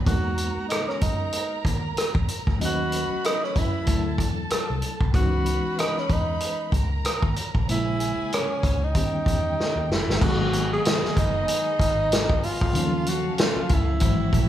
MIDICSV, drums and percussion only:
0, 0, Header, 1, 2, 480
1, 0, Start_track
1, 0, Key_signature, 5, "minor"
1, 0, Tempo, 634249
1, 52, Time_signature, 4, 2, 24, 8
1, 10964, End_track
2, 0, Start_track
2, 0, Title_t, "Drums"
2, 47, Note_on_c, 9, 42, 68
2, 49, Note_on_c, 9, 36, 105
2, 123, Note_off_c, 9, 42, 0
2, 125, Note_off_c, 9, 36, 0
2, 285, Note_on_c, 9, 42, 57
2, 361, Note_off_c, 9, 42, 0
2, 531, Note_on_c, 9, 42, 78
2, 542, Note_on_c, 9, 37, 103
2, 606, Note_off_c, 9, 42, 0
2, 617, Note_off_c, 9, 37, 0
2, 679, Note_on_c, 9, 37, 32
2, 755, Note_off_c, 9, 37, 0
2, 767, Note_on_c, 9, 42, 69
2, 771, Note_on_c, 9, 36, 80
2, 843, Note_off_c, 9, 42, 0
2, 846, Note_off_c, 9, 36, 0
2, 1003, Note_on_c, 9, 42, 76
2, 1078, Note_off_c, 9, 42, 0
2, 1247, Note_on_c, 9, 36, 83
2, 1258, Note_on_c, 9, 42, 65
2, 1323, Note_off_c, 9, 36, 0
2, 1334, Note_off_c, 9, 42, 0
2, 1491, Note_on_c, 9, 42, 92
2, 1499, Note_on_c, 9, 37, 87
2, 1567, Note_off_c, 9, 42, 0
2, 1575, Note_off_c, 9, 37, 0
2, 1626, Note_on_c, 9, 36, 91
2, 1702, Note_off_c, 9, 36, 0
2, 1729, Note_on_c, 9, 42, 66
2, 1804, Note_off_c, 9, 42, 0
2, 1870, Note_on_c, 9, 36, 81
2, 1886, Note_on_c, 9, 37, 29
2, 1945, Note_off_c, 9, 36, 0
2, 1961, Note_off_c, 9, 37, 0
2, 1976, Note_on_c, 9, 42, 73
2, 2052, Note_off_c, 9, 42, 0
2, 2210, Note_on_c, 9, 42, 60
2, 2285, Note_off_c, 9, 42, 0
2, 2455, Note_on_c, 9, 42, 82
2, 2466, Note_on_c, 9, 37, 102
2, 2531, Note_off_c, 9, 42, 0
2, 2542, Note_off_c, 9, 37, 0
2, 2604, Note_on_c, 9, 37, 33
2, 2679, Note_off_c, 9, 37, 0
2, 2693, Note_on_c, 9, 36, 82
2, 2694, Note_on_c, 9, 42, 70
2, 2768, Note_off_c, 9, 36, 0
2, 2770, Note_off_c, 9, 42, 0
2, 2926, Note_on_c, 9, 42, 76
2, 2932, Note_on_c, 9, 36, 78
2, 3002, Note_off_c, 9, 42, 0
2, 3007, Note_off_c, 9, 36, 0
2, 3166, Note_on_c, 9, 36, 81
2, 3178, Note_on_c, 9, 42, 67
2, 3242, Note_off_c, 9, 36, 0
2, 3254, Note_off_c, 9, 42, 0
2, 3408, Note_on_c, 9, 42, 100
2, 3417, Note_on_c, 9, 37, 92
2, 3484, Note_off_c, 9, 42, 0
2, 3492, Note_off_c, 9, 37, 0
2, 3647, Note_on_c, 9, 42, 66
2, 3723, Note_off_c, 9, 42, 0
2, 3788, Note_on_c, 9, 36, 86
2, 3864, Note_off_c, 9, 36, 0
2, 3890, Note_on_c, 9, 36, 108
2, 3891, Note_on_c, 9, 42, 69
2, 3965, Note_off_c, 9, 36, 0
2, 3966, Note_off_c, 9, 42, 0
2, 4130, Note_on_c, 9, 42, 60
2, 4206, Note_off_c, 9, 42, 0
2, 4378, Note_on_c, 9, 42, 79
2, 4389, Note_on_c, 9, 37, 102
2, 4454, Note_off_c, 9, 42, 0
2, 4465, Note_off_c, 9, 37, 0
2, 4523, Note_on_c, 9, 37, 31
2, 4599, Note_off_c, 9, 37, 0
2, 4612, Note_on_c, 9, 42, 72
2, 4613, Note_on_c, 9, 36, 87
2, 4688, Note_off_c, 9, 42, 0
2, 4689, Note_off_c, 9, 36, 0
2, 4847, Note_on_c, 9, 42, 81
2, 4923, Note_off_c, 9, 42, 0
2, 5087, Note_on_c, 9, 36, 85
2, 5100, Note_on_c, 9, 42, 67
2, 5163, Note_off_c, 9, 36, 0
2, 5175, Note_off_c, 9, 42, 0
2, 5333, Note_on_c, 9, 42, 96
2, 5341, Note_on_c, 9, 37, 88
2, 5408, Note_off_c, 9, 42, 0
2, 5416, Note_off_c, 9, 37, 0
2, 5468, Note_on_c, 9, 36, 90
2, 5543, Note_off_c, 9, 36, 0
2, 5573, Note_on_c, 9, 42, 71
2, 5648, Note_off_c, 9, 42, 0
2, 5712, Note_on_c, 9, 36, 83
2, 5787, Note_off_c, 9, 36, 0
2, 5819, Note_on_c, 9, 42, 74
2, 5894, Note_off_c, 9, 42, 0
2, 6055, Note_on_c, 9, 42, 59
2, 6130, Note_off_c, 9, 42, 0
2, 6300, Note_on_c, 9, 42, 76
2, 6311, Note_on_c, 9, 37, 107
2, 6376, Note_off_c, 9, 42, 0
2, 6387, Note_off_c, 9, 37, 0
2, 6534, Note_on_c, 9, 36, 85
2, 6536, Note_on_c, 9, 42, 73
2, 6610, Note_off_c, 9, 36, 0
2, 6612, Note_off_c, 9, 42, 0
2, 6771, Note_on_c, 9, 42, 80
2, 6773, Note_on_c, 9, 36, 78
2, 6847, Note_off_c, 9, 42, 0
2, 6849, Note_off_c, 9, 36, 0
2, 7009, Note_on_c, 9, 36, 84
2, 7021, Note_on_c, 9, 42, 67
2, 7085, Note_off_c, 9, 36, 0
2, 7097, Note_off_c, 9, 42, 0
2, 7268, Note_on_c, 9, 38, 49
2, 7344, Note_off_c, 9, 38, 0
2, 7504, Note_on_c, 9, 38, 72
2, 7580, Note_off_c, 9, 38, 0
2, 7645, Note_on_c, 9, 38, 70
2, 7721, Note_off_c, 9, 38, 0
2, 7731, Note_on_c, 9, 36, 108
2, 7733, Note_on_c, 9, 49, 86
2, 7806, Note_off_c, 9, 36, 0
2, 7808, Note_off_c, 9, 49, 0
2, 7971, Note_on_c, 9, 42, 62
2, 8047, Note_off_c, 9, 42, 0
2, 8213, Note_on_c, 9, 42, 84
2, 8224, Note_on_c, 9, 38, 106
2, 8289, Note_off_c, 9, 42, 0
2, 8300, Note_off_c, 9, 38, 0
2, 8362, Note_on_c, 9, 38, 33
2, 8438, Note_off_c, 9, 38, 0
2, 8449, Note_on_c, 9, 42, 71
2, 8451, Note_on_c, 9, 36, 83
2, 8525, Note_off_c, 9, 42, 0
2, 8527, Note_off_c, 9, 36, 0
2, 8687, Note_on_c, 9, 42, 79
2, 8763, Note_off_c, 9, 42, 0
2, 8927, Note_on_c, 9, 36, 82
2, 8939, Note_on_c, 9, 42, 67
2, 9002, Note_off_c, 9, 36, 0
2, 9015, Note_off_c, 9, 42, 0
2, 9172, Note_on_c, 9, 42, 101
2, 9180, Note_on_c, 9, 38, 91
2, 9247, Note_off_c, 9, 42, 0
2, 9255, Note_off_c, 9, 38, 0
2, 9305, Note_on_c, 9, 36, 92
2, 9381, Note_off_c, 9, 36, 0
2, 9410, Note_on_c, 9, 46, 50
2, 9485, Note_off_c, 9, 46, 0
2, 9547, Note_on_c, 9, 36, 87
2, 9622, Note_off_c, 9, 36, 0
2, 9648, Note_on_c, 9, 42, 74
2, 9724, Note_off_c, 9, 42, 0
2, 9887, Note_on_c, 9, 42, 62
2, 9963, Note_off_c, 9, 42, 0
2, 10127, Note_on_c, 9, 42, 79
2, 10137, Note_on_c, 9, 38, 108
2, 10202, Note_off_c, 9, 42, 0
2, 10213, Note_off_c, 9, 38, 0
2, 10362, Note_on_c, 9, 42, 70
2, 10368, Note_on_c, 9, 36, 82
2, 10438, Note_off_c, 9, 42, 0
2, 10444, Note_off_c, 9, 36, 0
2, 10596, Note_on_c, 9, 42, 82
2, 10607, Note_on_c, 9, 36, 82
2, 10672, Note_off_c, 9, 42, 0
2, 10682, Note_off_c, 9, 36, 0
2, 10843, Note_on_c, 9, 36, 86
2, 10851, Note_on_c, 9, 42, 69
2, 10919, Note_off_c, 9, 36, 0
2, 10927, Note_off_c, 9, 42, 0
2, 10964, End_track
0, 0, End_of_file